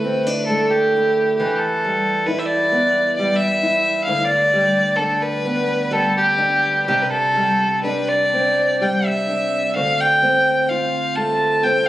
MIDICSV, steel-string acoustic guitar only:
0, 0, Header, 1, 2, 480
1, 0, Start_track
1, 0, Tempo, 903614
1, 736, Time_signature, 3, 2, 24, 8
1, 2654, Tempo, 949367
1, 6138, End_track
2, 0, Start_track
2, 0, Title_t, "Steel-string acoustic guitar"
2, 0, Program_c, 0, 25
2, 0, Note_on_c, 0, 38, 60
2, 0, Note_on_c, 0, 52, 62
2, 0, Note_on_c, 0, 57, 39
2, 0, Note_on_c, 0, 64, 47
2, 23, Note_on_c, 0, 60, 43
2, 141, Note_off_c, 0, 60, 0
2, 141, Note_on_c, 0, 62, 36
2, 157, Note_off_c, 0, 52, 0
2, 256, Note_off_c, 0, 57, 0
2, 265, Note_on_c, 0, 57, 45
2, 507, Note_off_c, 0, 64, 0
2, 509, Note_on_c, 0, 64, 48
2, 732, Note_off_c, 0, 38, 0
2, 741, Note_on_c, 0, 52, 68
2, 786, Note_off_c, 0, 62, 0
2, 788, Note_off_c, 0, 57, 0
2, 981, Note_on_c, 0, 55, 46
2, 1209, Note_off_c, 0, 64, 0
2, 1212, Note_on_c, 0, 64, 53
2, 1444, Note_on_c, 0, 59, 45
2, 1693, Note_off_c, 0, 55, 0
2, 1695, Note_on_c, 0, 55, 48
2, 1923, Note_off_c, 0, 64, 0
2, 1929, Note_on_c, 0, 64, 49
2, 2164, Note_off_c, 0, 52, 0
2, 2165, Note_on_c, 0, 38, 67
2, 2213, Note_off_c, 0, 64, 0
2, 2407, Note_off_c, 0, 55, 0
2, 2410, Note_on_c, 0, 55, 48
2, 2651, Note_on_c, 0, 62, 55
2, 2881, Note_off_c, 0, 59, 0
2, 2883, Note_on_c, 0, 59, 54
2, 3114, Note_off_c, 0, 55, 0
2, 3117, Note_on_c, 0, 55, 54
2, 3352, Note_off_c, 0, 62, 0
2, 3354, Note_on_c, 0, 62, 52
2, 3607, Note_off_c, 0, 38, 0
2, 3607, Note_on_c, 0, 48, 68
2, 3651, Note_off_c, 0, 59, 0
2, 3846, Note_off_c, 0, 55, 0
2, 3848, Note_on_c, 0, 55, 43
2, 4092, Note_off_c, 0, 62, 0
2, 4094, Note_on_c, 0, 62, 48
2, 4342, Note_on_c, 0, 60, 44
2, 4578, Note_off_c, 0, 55, 0
2, 4584, Note_on_c, 0, 55, 42
2, 4827, Note_off_c, 0, 62, 0
2, 4829, Note_on_c, 0, 62, 43
2, 5061, Note_on_c, 0, 38, 62
2, 5062, Note_off_c, 0, 48, 0
2, 5109, Note_off_c, 0, 55, 0
2, 5297, Note_off_c, 0, 60, 0
2, 5297, Note_on_c, 0, 60, 43
2, 5313, Note_off_c, 0, 62, 0
2, 5541, Note_on_c, 0, 65, 43
2, 5776, Note_on_c, 0, 57, 46
2, 6015, Note_off_c, 0, 60, 0
2, 6017, Note_on_c, 0, 60, 50
2, 6138, Note_off_c, 0, 38, 0
2, 6138, Note_off_c, 0, 57, 0
2, 6138, Note_off_c, 0, 60, 0
2, 6138, Note_off_c, 0, 65, 0
2, 6138, End_track
0, 0, End_of_file